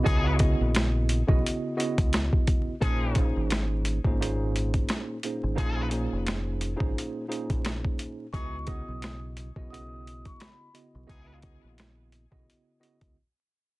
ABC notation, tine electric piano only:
X:1
M:4/4
L:1/16
Q:"Swing 16ths" 1/4=87
K:Db
V:1 name="Tine electric piano"
[D,_C_FGe]2 [D,CFGe]4- [D,CFGe] [D,CFGe]3 [D,CFGe]6 | [B,,B,DEAc]2 [B,,B,DEAc]4- [B,,B,DEAc] [B,,B,DEAc] [B,,B,DEAc]6 [B,,B,DEAc]2 | [B,,B,DEAc]2 [B,,B,DEAc]4- [B,,B,DEAc] [B,,B,DEAc]3 [B,,B,DEAc]6 | [D,_C_FGe]2 [D,CFGe]4- [D,CFGe] [D,CFGe] [D,CFGe]6 [D,CFGe]2 |
[D,_C_FGe]2 [D,CFGe]4- [D,CFGe] [D,CFGe]3 [D,CFGe]2 z4 |]